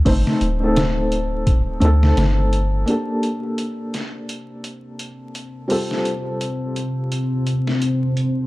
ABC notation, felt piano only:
X:1
M:4/4
L:1/16
Q:"Swing 16ths" 1/4=85
K:Gm
V:1 name="Felt piano"
[A,CEc]3 [A,CEA]6- [A,CEA] [A,CEA]6 | [B,DGA]16 | [G,CFGA]16 |]